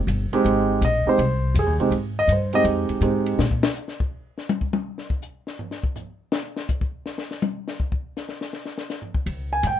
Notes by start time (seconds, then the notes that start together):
0.07 G1, hi-hat pedal, ride
0.32 G#3 C4 D#4 G4, muted upright bass stroke, ride
0.44 G#1, ride
0.81 A#1 D#5, hi-hat pedal, ride
1.06 G#3 C4 D#4 G4 C5, muted upright bass stroke
1.18 C2, ride
1.54 F2, hi-hat pedal, ride
1.59 G#4
1.66 D#2
1.78 C2 G#3 C4 D#4 G4, ride
1.91 G#2, ride
2.19 D#5
2.28 G2, hi-hat pedal, ride
2.32 C5
2.53 G#3 C4 D#4 G4 D#5, ride
2.64 F2, ride
2.89 muted upright bass stroke, ride
3.01 G#2 G#3 C4 D#4 G4, hi-hat pedal, ride
3.26 ride
3.39 A#2, snare
3.51 kick
3.63 snare
3.75 hi-hat pedal
3.88 snare
4.00 kick
4.38 snare
4.49 hi-hat pedal, high tom
4.61 kick
4.73 high tom
4.98 snare
5.10 kick
5.22 hi-hat pedal
5.47 snare
5.59 floor tom
5.71 snare
5.83 kick
5.96 floor tom, hi-hat pedal
6.32 snare
6.56 snare
6.69 kick, hi-hat pedal
6.81 kick
7.06 snare
7.18 snare
7.31 snare
7.42 hi-hat pedal, high tom
7.68 snare
7.80 kick
7.92 kick
8.17 snare, hi-hat pedal
8.29 snare
8.41 snare
8.53 snare
8.65 snare
8.78 snare
8.90 snare, hi-hat pedal
9.02 floor tom
9.14 kick
9.26 C#2, ride
9.53 G#5
9.63 G#2 G5, hi-hat pedal, ride